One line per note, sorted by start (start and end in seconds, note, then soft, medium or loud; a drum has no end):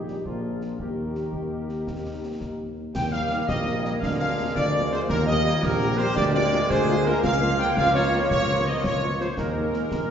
0.00 0.19 A#1 soft
0.00 0.22 A#3 soft
0.00 0.22 D#4 soft
0.00 0.22 G4 soft
0.00 0.26 G#4 soft
0.07 0.16 G3 medium
0.07 snare soft
0.25 0.74 A#1 soft
0.25 0.42 F3 medium
0.25 0.76 A#3 soft
0.25 0.80 D4 soft
0.25 0.76 F4 soft
0.25 0.80 G#4 soft
0.25 0.78 A#4 soft
0.25 concert bass drum medium
0.43 0.77 F3 medium
0.61 snare soft
0.79 1.27 D#2 soft
0.79 2.36 D#3 medium
0.79 2.73 A#3 soft
0.79 2.77 D#4 soft
0.79 2.77 G4 soft
0.79 2.64 G4 soft
0.79 2.73 A#4 soft
0.79 concert bass drum medium
1.15 snare soft
1.33 1.81 D#2 soft
1.33 concert bass drum medium
1.69 snare soft
1.87 2.34 D#2 soft
1.87 concert bass drum medium
1.87 snare soft
2.41 2.88 D#2 medium
2.41 concert bass drum medium
2.41 snare soft
2.94 3.40 D#2 medium
2.94 3.98 G3 medium
2.94 5.05 A#3 medium
2.94 3.02 G5 loud
2.94 3.11 G5 loud
2.94 concert bass drum medium
2.94 snare medium
2.94 crash medium
3.11 3.18 G3 medium
3.11 3.18 A#3 medium
3.11 3.18 D#4 medium
3.11 3.45 F5 loud
3.11 3.48 F5 medium
3.11 3.46 F5 medium
3.30 3.37 G3 medium
3.30 3.37 A#3 medium
3.30 3.37 D#4 medium
3.30 snare medium
3.47 3.93 A#1 medium
3.47 3.98 A#3 medium
3.47 3.81 D#5 medium
3.47 3.81 D#5 loud
3.47 3.82 D#5 medium
3.47 concert bass drum medium
3.47 snare medium
3.66 3.72 G3 medium
3.66 3.72 A#3 medium
3.66 3.72 D#4 medium
3.66 snare medium
3.83 3.90 G3 medium
3.83 3.91 A#3 medium
3.83 3.91 D#4 medium
3.83 3.91 D#5 medium
3.83 3.92 D#5 loud
3.83 4.01 D#5 medium
3.83 snare medium
4.00 4.47 D2 medium
4.00 5.09 G#3 medium
4.00 4.57 D4 medium
4.00 4.09 F5 loud
4.00 4.07 F5 loud
4.00 4.10 F5 loud
4.00 concert bass drum medium
4.00 snare medium
4.19 4.26 F3 medium
4.19 4.26 A#3 medium
4.19 4.26 G#4 medium
4.19 4.52 F5 loud
4.19 4.53 F5 medium
4.19 4.53 F5 loud
4.38 4.45 F3 medium
4.38 4.44 A#3 medium
4.38 4.44 G#4 medium
4.55 5.00 D2 medium
4.55 5.64 F4 loud
4.55 4.91 D5 medium
4.55 4.89 D5 loud
4.55 4.89 D5 medium
4.55 concert bass drum medium
4.55 snare medium
4.74 4.80 F3 medium
4.74 4.80 A#3 medium
4.74 4.80 G#4 medium
4.91 4.98 F3 medium
4.91 4.98 A#3 medium
4.91 4.98 G#4 medium
4.91 5.09 C5 medium
4.91 5.00 C5 loud
4.91 5.09 C5 medium
4.91 snare medium
5.09 5.49 D#2 loud
5.09 6.17 G3 medium
5.09 7.20 A#3 medium
5.09 5.26 A#4 loud
5.09 5.27 A#4 loud
5.09 5.18 A#4 loud
5.09 concert bass drum medium
5.09 snare medium
5.26 5.33 G3 medium
5.26 5.33 A#3 medium
5.26 5.33 G4 medium
5.26 5.62 D#5 medium
5.26 5.60 D#5 loud
5.44 5.51 G3 medium
5.44 5.51 A#3 medium
5.44 5.51 G4 medium
5.44 snare medium
5.62 6.07 A#1 loud
5.62 6.70 G4 loud
5.62 5.96 A#4 medium
5.62 5.99 A#4 loud
5.62 concert bass drum medium
5.62 snare medium
5.80 5.87 G3 medium
5.80 5.87 A#3 medium
5.80 5.87 G4 medium
5.80 snare medium
5.98 6.05 G3 medium
5.98 6.06 A#3 medium
5.98 6.05 G4 medium
5.98 6.16 C5 loud
5.98 6.04 C5 loud
5.98 6.15 C5 loud
5.98 snare medium
6.15 6.61 D2 loud
6.15 7.24 G#3 medium
6.15 6.24 D5 loud
6.15 6.33 D5 loud
6.15 concert bass drum medium
6.15 snare medium
6.34 6.41 G#3 medium
6.34 6.41 A#3 medium
6.34 6.41 F4 medium
6.34 6.67 D5 loud
6.52 6.58 G#3 medium
6.52 6.58 A#3 medium
6.52 6.58 F4 medium
6.69 7.14 D2 loud
6.69 7.20 G#4 loud
6.69 7.06 C5 loud
6.69 7.03 C5 loud
6.69 concert bass drum medium
6.69 snare medium
6.87 6.94 G#3 medium
6.87 6.94 A#3 medium
6.87 6.94 F4 medium
7.05 7.12 G#3 medium
7.05 7.12 A#3 medium
7.05 7.12 F4 medium
7.05 7.22 A#4 loud
7.05 7.23 A#4 loud
7.05 7.24 A#4 loud
7.05 snare medium
7.23 7.68 C#2 loud
7.23 9.38 F3 loud
7.23 9.34 A#3 loud
7.23 9.20 F4 loud
7.23 7.57 F5 loud
7.23 concert bass drum medium
7.23 snare medium
7.23 crash soft
7.41 7.48 F3 medium
7.41 7.48 A#3 medium
7.41 7.48 F4 medium
7.59 7.65 F3 medium
7.59 7.65 A#3 medium
7.59 7.65 F4 medium
7.59 7.77 G5 loud
7.59 7.67 G5 loud
7.59 7.76 G5 loud
7.59 snare medium
7.77 8.22 C#2 loud
7.77 7.95 F5 loud
7.77 7.94 F5 loud
7.77 7.95 F5 loud
7.77 concert bass drum medium
7.77 snare medium
7.94 8.02 F3 medium
7.94 8.01 A#3 medium
7.94 8.01 F4 medium
7.94 8.28 C#5 loud
7.94 snare medium
8.13 8.19 F3 medium
8.13 8.20 A#3 medium
8.13 8.19 F4 medium
8.13 snare medium
8.30 8.75 C#2 loud
8.30 8.63 C#5 loud
8.30 8.64 C#5 loud
8.30 concert bass drum medium
8.30 snare medium
8.49 8.55 F3 medium
8.49 8.55 A#3 medium
8.49 8.56 F4 medium
8.65 8.73 F3 medium
8.65 8.73 A#3 medium
8.65 8.73 F4 medium
8.65 8.71 D#5 medium
8.65 8.74 D#5 medium
8.65 8.85 D#5 loud
8.84 9.29 C#2 medium
8.84 9.17 C#5 medium
8.84 9.18 C#5 loud
8.84 concert bass drum medium
8.84 snare medium
9.03 9.09 F3 medium
9.03 9.09 A#3 medium
9.03 9.09 F4 medium
9.20 9.27 F3 medium
9.20 9.27 A#3 medium
9.20 9.27 F4 medium
9.20 9.36 C5 medium
9.20 9.28 C5 medium
9.20 9.38 C5 loud
9.20 snare medium
9.37 9.82 D#2 medium
9.37 10.11 G#3 medium
9.37 10.11 A#3 medium
9.37 10.11 D#4 medium
9.37 10.11 A#4 medium
9.37 concert bass drum medium
9.37 snare medium
9.56 9.62 G#3 medium
9.56 9.63 A#3 medium
9.56 9.62 D#4 medium
9.73 9.80 G#3 medium
9.73 9.80 A#3 medium
9.73 9.80 D#4 medium
9.73 snare medium
9.91 10.11 A#1 medium
9.91 concert bass drum medium
9.91 snare medium